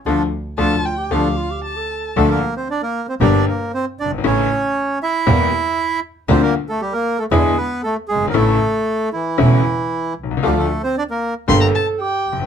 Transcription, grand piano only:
\new Staff \with { instrumentName = "Grand piano" } { \clef bass \time 4/4 \key d \minor \tempo 4 = 115 <d f a>8 r8 <d f a>8 r8 <d f a>8 r4. | <d, d f a d' a'>8 r4. <g,, g, d g bes g'>8 r4 r32 fis,,32 g,,32 gis,,32 | <a,, a, cis e a e'>8 r4. <e, e g bes g'>8 r4. | <d, d g bes f'>8 r4. <e, d e gis b e'>8 r4 r32 fis,,32 g,,32 gis,,32 |
<a,, a, cis e a e'>8 r4. <e,, e, cis e a e'>8 r4 r32 b,,32 c,32 cis,32 | <d, d f a f'>8 r4. <g,, g, d g bes g'>8 r4 r32 fis,,32 g,,32 r32 | }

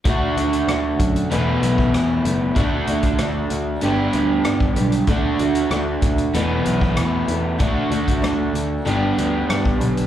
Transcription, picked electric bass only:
\new Staff \with { instrumentName = "Picked electric bass" } { \clef bass \time 4/4 \key d \major \tempo 4 = 95 d,8 d,8 d,8 fis,8 e,,8 b,,8 e,8 fis,,8 | d,8 d,8 d,8 d,8 g,,8 d,8 g,8 b,,8 | d,8 d,8 d,8 d,8 e,,8 b,,8 e,8 e,8 | d,8 d,8 d,8 d,8 g,,8 d,8 g,8 b,,8 | }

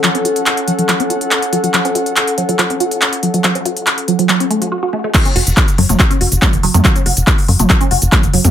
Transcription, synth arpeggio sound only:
\new Staff \with { instrumentName = "Synth arpeggio sound" } { \clef bass \time 4/4 \key fis \minor \tempo 4 = 141 fis16 cis'16 fis'16 r8. fis16 fis16 fis16 cis'16 fis'16 r8. fis16 fis16 | fis16 cis'16 fis'16 r8. fis16 fis16 fis16 cis'16 fis'16 r8. fis16 fis16 | fis16 cis'16 fis'16 r8. fis16 fis16 fis16 cis'16 a16 fis16 fis'16 fis'16 a16 a16 | fis16 cis'16 fis'16 r8. fis16 fis16 fis16 cis'16 fis'16 r8. fis16 fis16 |
fis16 cis'16 fis'16 r8. fis16 fis16 fis16 cis'16 fis'16 r8. fis16 fis16 | }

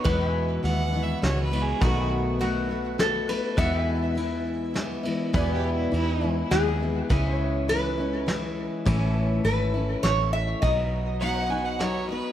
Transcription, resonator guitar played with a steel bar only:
\new Staff \with { instrumentName = "Resonator guitar played with a steel bar" } { \time 3/4 \key e \major \tempo 4 = 102 b'4 r2 | r4 fis'4 a'8 b'8 | e''2~ e''8 r8 | r2 gis'4~ |
gis'4 b'4. r8 | r4 b'4 cis''8 e''8 | dis''4 r2 | }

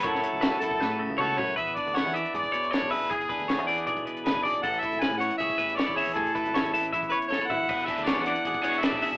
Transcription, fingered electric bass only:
\new Staff \with { instrumentName = "Fingered electric bass" } { \clef bass \time 4/4 \key e \mixolydian \tempo 4 = 157 fis,8 r16 cis,8 r16 fis,8 a,8. cis,8. fis,8 | e,8 r16 d,8 e8 r16 gis,16 r16 e,8 r16 b,,8 b,,16 | e,8. d,8 e,8. b,,8 r8 d,16 r16 b,,8 | a,,8 r16 gis,,8 a,8 r16 cis,16 r16 a,,8 r16 e,8 e,16 |
a,,8. gis,,8 a,,8. e,8 r8 fis,,8 e,,8 | e,,8 r16 d,8 e,8 r16 gis,,16 r16 e,,8 r16 b,,8 b,,16 | }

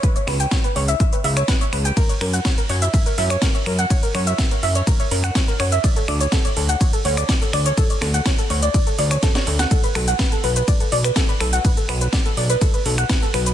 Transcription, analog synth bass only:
\new Staff \with { instrumentName = "Analog synth bass" } { \clef bass \time 4/4 \key b \minor \tempo 4 = 124 r8 cis,8 r8 cis,8 r8 cis,8 r8 cis,8 | r8 fis,8 r8 fis,8 r8 fis,8 r8 fis,8 | r8 fis,8 r8 fis,8 r8 fis,8 r8 fis,8 | r8 d,8 r8 d,8 r8 d,8 r8 d,8 |
r8 d,8 r8 d,8 r8 d,8 r8 d,8 | r8 b,,8 r8 b,,8 r8 b,,8 r8 b,,8 | r8 b,,8 r8 b,,8 r8 b,,8 r8 b,,8 | }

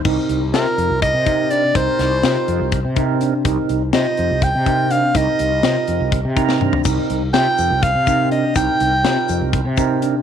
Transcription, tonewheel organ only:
\new Staff \with { instrumentName = "Tonewheel organ" } { \time 7/8 \key c \minor \tempo 4 = 123 <c c' ees' bes'>4 <c c' ees' bes'>4 r8 <c c' ees' bes'>4 | <c c' ees' bes'>4 <c c' ees' bes'>4 r8 <c c' ees' bes'>4 | <c c' ees' bes'>4 <c c' ees' c''>4 r8 <c c' ees' bes'>4 | <c c' ees' bes'>4 <c c' ees' bes'>4 r8 <c c' ees' bes' bes''>4 |
<c c' ees' bes'>4 <c c' ees' bes'>4 r8 <c c' ees' bes'>4 | <c c' ees' bes'>4 <c c' ees' bes'>4 r8 <c c' ees' bes'>4 | }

